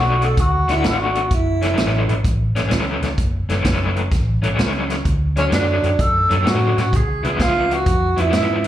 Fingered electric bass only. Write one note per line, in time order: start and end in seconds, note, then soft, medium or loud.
0.00 0.33 B1 medium
0.38 0.66 D2 medium
0.69 0.83 D2 medium
0.84 1.27 G#1 medium
1.31 1.74 F#1 medium
1.79 2.07 A1 medium
2.10 2.24 A1 medium
2.25 2.53 A1 medium
2.56 2.70 A1 medium
2.71 3.00 C#2 medium
3.02 3.17 C#2 medium
3.18 3.47 F#1 medium
3.48 3.63 F#1 medium
3.65 4.08 F#1 medium
4.11 4.40 A1 medium
4.43 4.57 A1 medium
4.58 5.01 C#2 medium
5.05 5.48 D2 medium
5.52 5.81 F#2 medium
5.83 5.98 F#2 medium
5.99 6.28 F#2 loud
6.31 6.45 F#2 medium
6.46 6.75 A2 medium
6.78 6.92 A2 medium
6.93 7.21 C#2 medium
7.24 7.38 C#2 medium
7.40 7.83 C#2 medium
7.86 8.15 F2 medium
8.17 8.32 F2 medium
8.33 8.67 G#2 medium